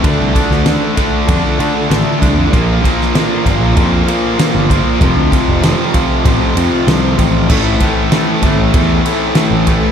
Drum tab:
CC |----------------|----------------|----------------|x---------------|
RD |x-x-x-x-x-x-x-x-|x-x-x-x-x-x-x-x-|x-x-x-x-x-x-x-x-|--x-x-x-x-x-x-x-|
SD |---oo-------o---|---oo-------o---|----o-------o---|----o-------o---|
BD |o-o---o-o-----o-|o-o---o-o-----o-|o-o---o-o-----o-|o-o---o-o-----o-|